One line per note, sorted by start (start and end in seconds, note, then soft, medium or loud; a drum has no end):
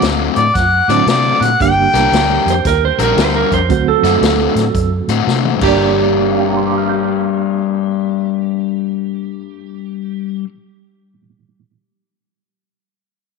0.02 0.27 D2 medium
0.02 0.43 D3 medium
0.02 0.43 A3 medium
0.02 0.43 C4 medium
0.02 0.43 F#4 medium
0.02 snare loud
0.02 closed hi-hat medium
0.36 0.50 A2 medium
0.36 0.57 D5 medium
0.36 closed hi-hat medium
0.55 0.80 F#2 medium
0.55 0.92 F#5 medium
0.55 kick loud
0.55 snare soft
0.55 closed hi-hat medium
0.88 1.02 A2 medium
0.88 1.06 D3 medium
0.88 1.06 F#3 medium
0.88 1.06 A3 medium
0.88 1.07 A3 medium
0.88 1.07 C4 medium
0.88 1.07 D4 medium
0.88 1.07 F#4 medium
0.88 1.08 D5 medium
0.88 closed hi-hat medium
1.06 1.32 C3 medium
1.06 1.47 D3 medium
1.06 1.47 A3 medium
1.06 1.48 C4 medium
1.06 1.48 F#4 medium
1.06 1.45 D5 medium
1.06 snare loud
1.06 closed hi-hat medium
1.41 1.54 A#2 medium
1.41 1.61 F#5 medium
1.41 closed hi-hat medium
1.60 1.85 G1 medium
1.60 3.07 D3 medium
1.60 3.07 G3 medium
1.60 3.07 A#3 medium
1.60 3.07 D4 medium
1.60 3.07 G4 medium
1.60 2.62 G5 loud
1.60 kick loud
1.60 closed hi-hat medium
1.93 2.07 C2 medium
1.93 2.12 G3 medium
1.93 2.12 D4 medium
1.93 2.13 G4 medium
1.93 2.12 A#4 medium
1.93 snare soft
1.93 closed hi-hat medium
2.12 2.37 D2 medium
2.12 2.53 G3 medium
2.12 2.53 D4 medium
2.12 2.53 G4 medium
2.12 2.53 A#4 medium
2.12 snare loud
2.12 closed hi-hat medium
2.46 2.60 F2 medium
2.46 closed hi-hat medium
2.50 2.66 C5 medium
2.65 2.90 D#2 medium
2.65 2.83 A#4 medium
2.65 kick loud
2.65 snare soft
2.65 closed hi-hat medium
2.85 3.01 C5 medium
2.98 3.12 A#1 medium
2.98 3.15 G3 medium
2.98 3.16 D4 medium
2.98 3.16 G4 medium
2.98 3.17 A#4 medium
2.98 closed hi-hat medium
3.03 3.19 A#4 medium
3.16 3.42 D2 medium
3.16 3.57 G3 medium
3.16 3.57 D4 medium
3.16 3.57 G4 medium
3.16 3.58 A#4 medium
3.16 snare loud
3.16 closed hi-hat medium
3.21 3.36 C5 medium
3.36 3.53 A#4 medium
3.52 3.70 F2 medium
3.52 3.70 C5 medium
3.52 kick medium
3.52 closed hi-hat medium
3.69 3.95 D2 medium
3.69 5.16 D3 medium
3.69 5.16 F#3 medium
3.69 5.16 A3 medium
3.69 5.17 C4 medium
3.69 5.17 F#4 medium
3.69 3.88 C5 medium
3.69 kick loud
3.69 closed hi-hat medium
3.88 4.90 A4 medium
4.03 4.17 F#2 medium
4.03 4.21 D3 medium
4.03 4.22 A3 medium
4.03 4.22 C4 medium
4.03 4.22 F#4 medium
4.03 snare soft
4.03 closed hi-hat medium
4.21 4.47 D2 medium
4.21 4.62 D3 medium
4.21 4.62 A3 medium
4.21 4.63 C4 medium
4.21 4.63 F#4 medium
4.21 snare loud
4.21 closed hi-hat medium
4.55 4.69 A2 medium
4.55 snare soft
4.55 closed hi-hat medium
4.75 5.00 F#2 medium
4.75 kick loud
4.75 closed hi-hat medium
5.08 5.22 A2 medium
5.08 5.26 D3 medium
5.08 5.26 A3 medium
5.08 5.26 C4 medium
5.08 5.27 F#4 medium
5.08 closed hi-hat medium
5.27 5.52 C3 medium
5.27 5.61 D3 medium
5.27 5.59 A3 medium
5.27 5.61 C4 medium
5.27 5.62 F#4 medium
5.27 snare medium
5.45 mid tom medium
5.56 10.40 G2 medium
5.56 10.44 G3 medium
5.61 10.42 G1 medium
5.61 10.47 A#3 medium
5.61 10.46 D4 medium
5.61 10.50 D4 medium
5.61 10.47 G4 medium
5.61 10.43 G4 loud
5.61 10.49 A#4 loud
5.61 kick loud
5.61 crash medium
5.68 10.52 D5 medium
6.32 11.13 F5 soft
6.40 11.20 G5 soft
6.48 11.28 A#5 soft
6.57 11.37 C6 soft
6.67 11.47 D6 soft
6.78 11.58 F6 soft
6.89 11.70 G6 soft